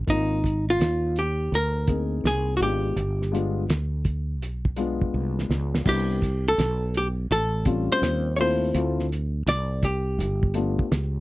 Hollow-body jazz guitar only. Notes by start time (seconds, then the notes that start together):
0.10 D#4
0.70 F4
1.19 G4
1.55 A#4
2.27 G#4
2.57 F#4
2.63 G4
5.89 G4
6.48 A4
6.97 G4
7.32 A4
7.92 C5
8.36 C#5
8.41 C5
9.49 D5
9.85 G4